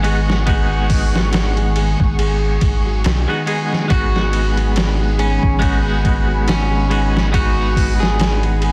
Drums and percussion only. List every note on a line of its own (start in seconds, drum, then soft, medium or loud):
0.04 ride medium
0.30 snare soft
0.47 kick loud
0.47 ride loud
0.90 kick medium
0.90 open hi-hat medium
1.16 snare medium
1.33 snare loud
1.33 ride medium
1.57 ride soft
1.76 ride medium
2.00 kick loud
2.19 ride medium
2.61 kick medium
2.61 ride medium
3.04 snare loud
3.04 ride medium
3.47 ride medium
3.73 snare soft
3.90 kick loud
3.90 ride medium
4.16 snare soft
4.33 ride medium
4.57 ride soft
4.76 snare loud
4.76 ride medium
5.19 ride medium
5.43 kick loud
5.62 kick loud
5.62 ride medium
6.05 kick medium
6.05 ride medium
6.48 snare loud
6.48 ride medium
6.91 ride medium
7.17 snare medium
7.34 kick loud
7.34 ride loud
7.76 kick medium
7.76 open hi-hat medium
8.03 snare medium
8.20 snare loud
8.20 ride medium
8.43 ride soft
8.62 ride medium